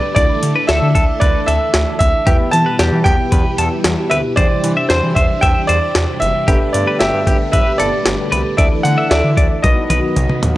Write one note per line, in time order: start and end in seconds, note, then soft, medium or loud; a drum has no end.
0.00 2.23 D3 medium
0.00 0.14 G3 medium
0.00 2.23 A3 medium
0.00 0.14 B3 medium
0.00 0.15 D4 soft
0.00 0.12 G4 medium
0.00 0.16 G4 soft
0.00 0.15 A4 soft
0.00 0.16 B4 medium
0.00 0.13 D5 medium
0.15 0.27 D2 loud
0.15 2.25 E3 medium
0.15 2.23 D4 medium
0.15 2.23 E4 medium
0.15 4.33 E4 medium
0.15 2.23 A4 medium
0.15 2.25 A4 medium
0.15 0.64 D5 loud
0.15 0.25 D5 loud
0.15 2.23 D5 medium
0.15 kick loud
0.15 closed hi-hat medium
0.43 0.53 D3 medium
0.43 closed hi-hat medium
0.56 0.65 B4 medium
0.67 0.80 D2 loud
0.67 0.87 A4 medium
0.67 1.22 E5 loud
0.67 snare loud
0.67 closed hi-hat medium
0.82 0.93 D3 loud
0.95 1.06 D2 loud
0.95 1.04 A4 medium
0.95 kick loud
0.95 closed hi-hat medium
1.20 1.32 D2 loud
1.20 1.40 B4 medium
1.20 1.48 D5 loud
1.20 kick loud
1.20 closed hi-hat medium
1.46 1.59 D2 loud
1.46 1.57 A4 medium
1.46 1.96 E5 loud
1.46 closed hi-hat medium
1.74 1.85 D2 loud
1.74 snare loud
1.74 closed hi-hat medium
1.99 2.11 D2 medium
1.99 2.54 E5 loud
1.99 kick medium
1.99 closed hi-hat medium
2.27 2.37 E2 loud
2.27 4.35 B2 medium
2.27 4.35 E3 medium
2.27 8.54 G3 medium
2.27 4.33 B3 medium
2.27 4.33 E4 medium
2.27 2.36 G4 loud
2.27 4.35 G4 medium
2.27 4.33 G4 medium
2.27 4.33 B4 medium
2.27 kick loud
2.27 closed hi-hat medium
2.51 2.64 E3 loud
2.51 3.07 A5 loud
2.51 closed hi-hat medium
2.66 2.75 B4 medium
2.79 2.90 E2 loud
2.79 2.98 G4 medium
2.79 snare loud
2.79 closed hi-hat medium
2.93 3.03 E3 loud
3.04 3.16 E2 loud
3.04 3.15 G4 medium
3.04 4.13 G5 loud
3.04 kick loud
3.04 closed hi-hat medium
3.32 3.43 E2 loud
3.32 3.51 B4 medium
3.32 kick medium
3.32 closed hi-hat medium
3.58 3.69 E2 loud
3.58 3.68 A4 medium
3.58 closed hi-hat medium
3.84 3.95 E2 loud
3.84 snare loud
3.84 closed hi-hat medium
4.10 4.22 D2 medium
4.10 4.20 B4 medium
4.10 4.16 E5 medium
4.10 closed hi-hat medium
4.36 4.48 E2 loud
4.36 6.46 C3 medium
4.36 6.46 E3 medium
4.36 6.46 D4 medium
4.36 6.44 D4 medium
4.36 6.44 E4 medium
4.36 8.54 G4 medium
4.36 6.44 G4 medium
4.36 4.46 C5 loud
4.36 6.44 C5 medium
4.36 4.91 D5 loud
4.36 kick loud
4.36 closed hi-hat medium
4.64 4.74 E3 loud
4.64 closed hi-hat medium
4.77 4.86 E5 medium
4.89 5.01 E2 loud
4.89 5.16 C5 medium
4.89 5.09 C5 medium
4.89 snare loud
4.89 closed hi-hat medium
5.03 5.14 E3 loud
5.15 5.27 E2 loud
5.15 5.26 C5 medium
5.15 5.43 E5 medium
5.15 kick loud
5.15 closed hi-hat medium
5.41 5.53 E2 loud
5.41 5.61 E5 medium
5.41 5.66 G5 loud
5.41 kick medium
5.41 closed hi-hat medium
5.67 5.80 E2 loud
5.67 5.78 C5 medium
5.67 6.17 D5 loud
5.67 closed hi-hat medium
5.95 6.06 E2 loud
5.95 snare loud
5.95 closed hi-hat medium
6.20 6.32 F#1 medium
6.20 6.75 E5 loud
6.20 closed hi-hat medium
6.48 6.59 G1 loud
6.48 8.56 D3 medium
6.48 9.61 A3 medium
6.48 8.56 B3 medium
6.48 8.54 D4 medium
6.48 6.57 G4 loud
6.48 8.54 G4 medium
6.48 8.54 A4 medium
6.48 8.54 B4 medium
6.48 kick loud
6.48 closed hi-hat medium
6.73 6.85 G2 loud
6.73 6.98 D5 medium
6.73 closed hi-hat medium
6.87 6.97 B4 medium
6.99 7.11 G1 medium
6.99 7.19 G4 medium
6.99 7.51 E5 medium
6.99 snare loud
6.99 closed hi-hat medium
7.14 7.24 G2 medium
7.27 7.38 G1 loud
7.27 7.36 G4 medium
7.27 kick loud
7.27 closed hi-hat medium
7.52 7.64 G1 loud
7.52 7.72 B4 medium
7.52 7.80 E5 medium
7.52 kick loud
7.52 closed hi-hat medium
7.78 7.90 G1 loud
7.78 7.89 A4 medium
7.78 8.60 D5 loud
7.78 closed hi-hat medium
8.06 8.17 G1 loud
8.06 snare loud
8.06 closed hi-hat medium
8.32 8.43 C2 medium
8.32 8.41 B4 medium
8.32 closed hi-hat medium
8.57 8.69 D2 loud
8.57 9.63 D3 medium
8.57 9.63 E3 medium
8.57 9.62 D4 medium
8.57 9.62 E4 medium
8.57 9.63 E4 medium
8.57 9.62 A4 medium
8.57 9.63 A4 medium
8.57 8.68 D5 loud
8.57 9.62 D5 medium
8.57 8.63 E5 loud
8.57 kick loud
8.57 closed hi-hat medium
8.83 8.95 D3 loud
8.83 9.11 F#5 medium
8.83 closed hi-hat medium
8.98 9.07 E5 medium
9.10 9.22 D2 loud
9.10 9.30 D5 medium
9.10 9.65 E5 medium
9.10 snare loud
9.10 closed hi-hat medium
9.24 9.35 D3 medium
9.37 9.48 D2 loud
9.37 9.47 D5 medium
9.37 kick loud
9.37 closed hi-hat medium
9.62 9.75 B1 loud
9.62 10.57 D#3 medium
9.62 10.57 F#3 medium
9.62 10.57 B3 medium
9.62 10.57 D#4 medium
9.62 10.57 F#4 medium
9.62 10.57 B4 medium
9.62 10.38 D#5 medium
9.62 9.82 D#5 medium
9.62 10.57 D#5 medium
9.62 kick loud
9.62 closed hi-hat medium
9.62 high tom medium
9.90 10.01 B1 loud
9.90 9.99 B4 medium
9.90 closed hi-hat medium
9.90 mid tom medium
10.16 10.27 B1 loud
10.16 closed hi-hat medium
10.16 mid tom medium
10.30 mid tom medium
10.43 10.53 D#2 medium
10.43 closed hi-hat medium
10.43 floor tom loud